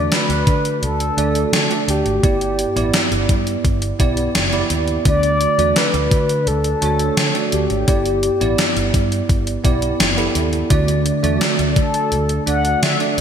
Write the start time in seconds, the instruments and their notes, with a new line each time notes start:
Already playing: tine electric piano D3 A3 D4 F#4 D5
0.12 soft synth lead B4, snare, closed hi-hat
0.29 fingered electric bass D2, closed hi-hat
0.47 fingered electric bass D3, kick, closed hi-hat
0.65 closed hi-hat
0.82 fingered electric bass D2, soft synth lead A4, closed hi-hat
1.00 closed hi-hat
1.17 fingered electric bass D2, tine electric piano A3 D4 F#4 D5, closed hi-hat
1.35 closed hi-hat
1.53 fingered electric bass D3, snare, closed hi-hat
1.70 tine electric piano A3 D4 F#4 D5, closed hi-hat
1.88 fingered electric bass D2, soft synth lead G4, closed hi-hat
2.06 fingered electric bass G#1, closed hi-hat
2.23 fingered electric bass G1, tine electric piano G2 B3 E4 G4 D5, kick, closed hi-hat
2.41 closed hi-hat
2.59 closed hi-hat
2.76 fingered electric bass A1, tine electric piano B3 E4 G4 D5, closed hi-hat
2.94 snare, closed hi-hat
3.11 fingered electric bass G1, closed hi-hat
3.29 fingered electric bass G2, kick, closed hi-hat
3.47 closed hi-hat
3.65 fingered electric bass G1, kick, closed hi-hat
3.82 closed hi-hat
3.99 fingered electric bass B1, tine electric piano B3 E4 G4 D5, kick, closed hi-hat
4.17 closed hi-hat
4.35 fingered electric bass F#1, snare, closed hi-hat
4.52 tine electric piano B3 E4 G4 D5, closed hi-hat
4.70 fingered electric bass D#2, closed hi-hat
4.88 closed hi-hat
5.05 fingered electric bass D2, tine electric piano D3 A3 D4 F#4 D5, soft synth lead D5, kick, closed hi-hat
5.23 closed hi-hat
5.41 closed hi-hat
5.58 fingered electric bass E2, tine electric piano A3 D4 F#4 D5, closed hi-hat
5.76 soft synth lead B4, snare, closed hi-hat
5.94 fingered electric bass D2, closed hi-hat
6.11 fingered electric bass D3, kick, closed hi-hat
6.29 closed hi-hat
6.47 fingered electric bass D2, soft synth lead A4, closed hi-hat
6.64 closed hi-hat
6.81 fingered electric bass D2, tine electric piano A3 D4 F#4 C#5, closed hi-hat
6.99 closed hi-hat
7.17 fingered electric bass D3, snare, closed hi-hat
7.34 tine electric piano A3 D4 F#4 D5, closed hi-hat
7.52 fingered electric bass D2, soft synth lead G4, closed hi-hat
7.70 fingered electric bass G#1, closed hi-hat
7.87 fingered electric bass G1, tine electric piano G2 B3 E4 G4 D5, kick, closed hi-hat
8.06 closed hi-hat
8.23 closed hi-hat
8.40 fingered electric bass A1, tine electric piano B3 E4 G4 D5, closed hi-hat
8.58 snare, closed hi-hat
8.77 fingered electric bass G1, closed hi-hat
8.94 fingered electric bass G2, kick, closed hi-hat
9.12 closed hi-hat
9.29 fingered electric bass G1, kick, closed hi-hat
9.47 closed hi-hat
9.64 fingered electric bass B1, tine electric piano B3 E4 G4 D5, kick, closed hi-hat
9.82 closed hi-hat
10.00 fingered electric bass F#1, snare, closed hi-hat
10.17 tine electric piano B3 E4 G4 A4, closed hi-hat
10.35 fingered electric bass D#2, closed hi-hat
10.53 closed hi-hat
10.70 fingered electric bass D2, tine electric piano D3 A3 D4 F#4 D5, kick, closed hi-hat
10.88 closed hi-hat
11.06 closed hi-hat
11.23 fingered electric bass E2, tine electric piano A3 D4 F#4 D5, closed hi-hat
11.41 snare, closed hi-hat
11.59 fingered electric bass D2, closed hi-hat
11.76 fingered electric bass D3, soft synth lead A4, kick, closed hi-hat
11.94 closed hi-hat
12.12 fingered electric bass D2, closed hi-hat
12.29 closed hi-hat
12.46 fingered electric bass D2, tine electric piano A3 D4 F#4 D5, soft synth lead F#5, closed hi-hat
12.65 closed hi-hat
12.82 fingered electric bass D3, soft synth lead E5, snare, closed hi-hat
12.99 tine electric piano A3 D4 F#4 D5, closed hi-hat
13.18 fingered electric bass D2